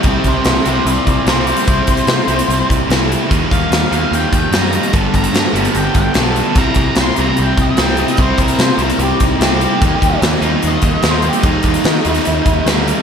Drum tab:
HH |x-x-x-x-x-x-x-xx|x-xxx-xxx-x-x-x-|x-x-x-x-x-x-x-xx|x-xxx-xxx-x-x-x-|
SD |----o-------o---|----o-------o---|----o-------o---|----o-------o---|
BD |o-o-------o-----|o-o-------o-----|o-o-------o-----|o-o-------o-----|

HH |x-x-x-x-x-x-x-xx|x-xxx-xxx-x-x-x-|x-x-x-x-x-x-x-xx|x-xxx-xxx-x-x-x-|
SD |----o-------o---|----o-------o---|----o-------o---|----o--o----o---|
BD |o-o-------o-----|o-o-------o-----|o-o-------o-----|o-o-------o-----|